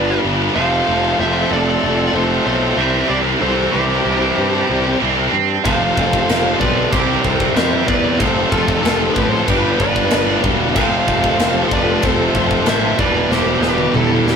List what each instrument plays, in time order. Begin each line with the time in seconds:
Already playing: picked electric bass G1, distorted electric guitar G2 D3 G3, string section D3 B3 G4 B4, lead electric guitar B4 D5
0.02 distorted electric guitar G3 B3
0.10 distorted electric guitar G3 B3
0.17 distorted electric guitar G3 B3
0.25 picked electric bass G1, distorted electric guitar G3 B3
0.32 distorted electric guitar G3 B3
0.40 distorted electric guitar G3 B3
0.48 string section F3, distorted electric guitar G3 B3
0.52 picked electric bass F1, distorted electric guitar F2 C3 F3 A3, string section C4 A4, lead electric guitar C5 F5
0.57 distorted electric guitar F3
0.63 distorted electric guitar F3 A3
0.70 distorted electric guitar F3 A3
0.78 distorted electric guitar F3 A3
0.86 picked electric bass F1, distorted electric guitar F3 A3
0.94 distorted electric guitar F3 A3
1.02 distorted electric guitar F3 A3
1.09 distorted electric guitar F3 A3
1.17 picked electric bass F1, distorted electric guitar F3 A3, lead electric guitar C5 E5
1.25 distorted electric guitar F3 A3
1.33 distorted electric guitar F3 A3
1.40 distorted electric guitar F3 A3
1.47 picked electric bass F1, distorted electric guitar F3 A3, lead electric guitar A4
1.53 distorted electric guitar F3 A3, lead electric guitar D5
1.63 distorted electric guitar F3 A3
1.71 distorted electric guitar F3 A3
1.79 distorted electric guitar F3 A3
1.83 picked electric bass F1, distorted electric guitar F3 A3
1.94 distorted electric guitar F3 A3
2.01 distorted electric guitar F3 A3
2.09 distorted electric guitar F3 A3
2.13 picked electric bass F1, distorted electric guitar F3 A3, lead electric guitar A4 C5
2.25 distorted electric guitar F3 A3
2.32 distorted electric guitar F3 A3
2.39 distorted electric guitar F3 A3
2.46 picked electric bass B1, distorted electric guitar F3 A3, lead electric guitar A4 C5
2.54 distorted electric guitar F3 A3
2.63 distorted electric guitar F3 A3
2.71 distorted electric guitar F3 A3
2.77 picked electric bass C2, distorted electric guitar C3 E3 G3 C4, string section E3 G4, lead electric guitar C5 E5
2.86 distorted electric guitar C3 E3
2.93 distorted electric guitar C3 E3
3.01 distorted electric guitar C3 E3
3.08 picked electric bass C2, distorted electric guitar C3 E3, lead electric guitar G4 D5
3.17 distorted electric guitar C3 E3
3.25 distorted electric guitar C3 E3
3.33 distorted electric guitar C3 E3
3.40 picked electric bass C2, distorted electric guitar C3 E3, lead electric guitar A4 C5
3.47 distorted electric guitar C3 E3
3.55 distorted electric guitar C3 E3
3.64 distorted electric guitar C3 E3
3.71 picked electric bass C2, distorted electric guitar C3 E3, lead electric guitar G4 C5
3.79 distorted electric guitar C3 E3
3.87 distorted electric guitar C3 E3
3.94 distorted electric guitar C3 E3
4.01 distorted electric guitar C3 E3
4.05 picked electric bass C2
4.10 distorted electric guitar C3 E3
4.18 distorted electric guitar C3 E3
4.25 distorted electric guitar C3 E3
4.33 distorted electric guitar C3 E3
4.38 picked electric bass G2, distorted electric guitar C3 E3
4.48 distorted electric guitar C3 E3
4.56 distorted electric guitar C3 E3
4.64 distorted electric guitar C3 E3
4.70 picked electric bass C2, distorted electric guitar C3 E3
4.79 distorted electric guitar C3 E3
4.88 distorted electric guitar C3 E3
4.95 distorted electric guitar C3 E3
5.00 picked electric bass C2, distorted electric guitar C3 E3 G3 C4
5.09 distorted electric guitar C3 E3
5.17 distorted electric guitar C3 E3
5.26 distorted electric guitar C3 E3
5.33 picked electric bass G2
5.63 picked electric bass F1, distorted electric guitar F2 C3 F3 A3, string section F3 C4 A4, lead electric guitar C5 F5, kick, crash
5.72 distorted electric guitar F3 A3
5.79 distorted electric guitar F3 A3
5.87 distorted electric guitar F3 A3
5.95 picked electric bass F1, distorted electric guitar F3 A3, kick
6.02 distorted electric guitar F3 A3
6.10 distorted electric guitar F3 A3, kick
6.17 distorted electric guitar F3 A3
6.24 distorted electric guitar F3 A3
6.29 picked electric bass F1, snare, crash
6.33 distorted electric guitar F3 A3
6.39 distorted electric guitar F3 A3
6.47 distorted electric guitar F3 A3
6.55 distorted electric guitar F3 A3
6.60 picked electric bass B1, distorted electric guitar F3 A3, lead electric guitar B4 D5, kick
6.70 distorted electric guitar F3 A3
6.77 distorted electric guitar F3 A3
6.85 distorted electric guitar F3 A3
6.91 picked electric bass C2, distorted electric guitar C3 E3 G3 C4, string section E3 G4, lead electric guitar G4 C5, kick, crash
7.00 distorted electric guitar C3 E3
7.07 distorted electric guitar C3 E3
7.15 distorted electric guitar C3 E3
7.22 picked electric bass C2, distorted electric guitar C3 E3, lead electric guitar A4 C5, kick
7.30 distorted electric guitar C3 E3
7.37 distorted electric guitar C3 E3, kick
7.45 distorted electric guitar C3 E3
7.53 picked electric bass F2, distorted electric guitar C3 E3, lead electric guitar C5 E5, crash
7.57 distorted electric guitar C3, snare
7.62 distorted electric guitar E3
7.68 distorted electric guitar C3 E3
7.75 distorted electric guitar C3 E3
7.82 distorted electric guitar C3 E3
7.88 picked electric bass E2, distorted electric guitar C3 E3, lead electric guitar B4 D5, kick
7.97 distorted electric guitar C3 E3
8.05 distorted electric guitar C3 E3
8.13 distorted electric guitar C3 E3
8.17 picked electric bass F1, distorted electric guitar F2 C3 F3, string section F3 A4, lead electric guitar A4 C5, kick, crash
8.21 distorted electric guitar F3 A3
8.28 distorted electric guitar F3 A3
8.36 distorted electric guitar F3 A3
8.42 distorted electric guitar F3 A3
8.50 picked electric bass F1, distorted electric guitar F3 A3, lead electric guitar F4 A4, kick
8.58 distorted electric guitar F3
8.62 distorted electric guitar F3 A3
8.68 distorted electric guitar A3, kick
8.74 distorted electric guitar F3
8.78 distorted electric guitar F3 A3
8.82 picked electric bass F1, distorted electric guitar A3, lead electric guitar F4 A4, snare, crash
8.87 distorted electric guitar F3
8.93 distorted electric guitar F3 A3
9.01 distorted electric guitar F3 A3
9.09 distorted electric guitar F3 A3
9.14 picked electric bass A1, distorted electric guitar F3 A3, lead electric guitar G4 B4, kick
9.25 distorted electric guitar F3 A3
9.30 distorted electric guitar F3 A3, lead electric guitar A4 C5
9.41 distorted electric guitar F3 A3
9.46 picked electric bass G1, distorted electric guitar G2 D3 G3 B3, string section G3 B3 D4 B4, lead electric guitar B4, kick, crash
9.50 distorted electric guitar G3, lead electric guitar G4
9.55 distorted electric guitar G3 B3
9.63 distorted electric guitar G3 B3
9.71 distorted electric guitar G3 B3
9.78 picked electric bass G1, distorted electric guitar G3 B3, lead electric guitar B4 D5, kick
9.87 distorted electric guitar G3 B3
9.93 distorted electric guitar G3, kick
9.97 distorted electric guitar G3 B3
10.05 distorted electric guitar G3 B3
10.11 picked electric bass G1, distorted electric guitar B3, snare, crash
10.15 distorted electric guitar G3
10.21 distorted electric guitar B3
10.25 distorted electric guitar G3 B3
10.31 distorted electric guitar G3
10.37 distorted electric guitar G3 B3
10.44 picked electric bass E1, distorted electric guitar G3 B3, kick
10.52 distorted electric guitar G3 B3
10.60 distorted electric guitar G3 B3
10.69 distorted electric guitar G3 B3
10.74 picked electric bass F1, distorted electric guitar F2 F3 A3, string section F3 A3 C4 A4, lead electric guitar F5, kick, crash
10.79 distorted electric guitar C3 F3, lead electric guitar C5
10.83 distorted electric guitar F3 A3
10.90 distorted electric guitar F3 A3
10.97 distorted electric guitar F3 A3
11.07 picked electric bass F1, distorted electric guitar F3 A3, kick
11.14 distorted electric guitar F3 A3
11.22 distorted electric guitar F3 A3, kick
11.30 distorted electric guitar F3 A3
11.37 picked electric bass F1, distorted electric guitar F3 A3, snare, crash
11.45 distorted electric guitar F3 A3
11.52 distorted electric guitar F3 A3
11.60 distorted electric guitar F3 A3, lead electric guitar C5
11.65 distorted electric guitar F3 A3, lead electric guitar A4
11.71 picked electric bass F1, distorted electric guitar F3 A3, lead electric guitar B4 D5, kick
11.84 distorted electric guitar F3 A3
11.91 distorted electric guitar F3 A3
11.99 picked electric bass F1, distorted electric guitar F3 A3, kick, crash
12.05 distorted electric guitar F3 A3, lead electric guitar A4 C5
12.14 distorted electric guitar F3 A3
12.22 distorted electric guitar F3 A3
12.30 distorted electric guitar F3 A3
12.34 picked electric bass F1, distorted electric guitar F3 A3, lead electric guitar A4 C5, kick
12.45 distorted electric guitar F3 A3
12.51 distorted electric guitar F3 A3, kick
12.60 distorted electric guitar F3 A3
12.66 picked electric bass A1, distorted electric guitar F3 A3, lead electric guitar C5 E5, snare, crash
12.75 distorted electric guitar F3 A3
12.83 distorted electric guitar F3 A3
12.91 distorted electric guitar F3 A3
12.97 picked electric bass E1, distorted electric guitar E2 B2 E3 G3, string section B2 E3 G3 G4, lead electric guitar B4 D5, kick
13.05 distorted electric guitar E3 G3
13.13 distorted electric guitar E3 G3
13.20 distorted electric guitar E3 G3
13.29 picked electric bass E1, distorted electric guitar E3 G3, lead electric guitar G4 C5, snare
13.36 distorted electric guitar E3 G3
13.44 distorted electric guitar E3 G3
13.52 distorted electric guitar E3 G3
13.61 picked electric bass E1, distorted electric guitar E3 G3, lead electric guitar G4 B4, snare
13.67 distorted electric guitar E3 G3
13.75 distorted electric guitar E3 G3, high tom
13.83 distorted electric guitar E3 G3
13.91 picked electric bass E1, distorted electric guitar E3 G3, mid tom
13.95 distorted electric guitar E3, lead electric guitar E4 A4
13.99 distorted electric guitar G3
14.06 distorted electric guitar E3 G3
14.14 distorted electric guitar E3 G3
14.21 distorted electric guitar E3 G3
14.25 picked electric bass E1, lead electric guitar E4 G4, snare
14.30 distorted electric guitar E3 G3